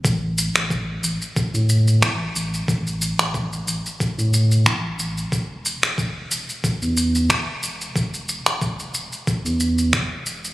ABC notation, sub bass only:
X:1
M:4/4
L:1/16
Q:"Swing 16ths" 1/4=91
K:Em
V:1 name="Sub bass" clef=bass
A,,,3 A,,,3 A,,, z2 A,,3 A,,,2 A,,,2 | A,,,3 A,,,3 A,,, z2 A,,3 A,,,2 A,,,2 | E,,,3 E,,,3 E,,, z2 E,,3 E,,,2 E,,,2 | E,,,3 E,,,3 E,,, z2 E,,3 E,,,2 E,,,2 |]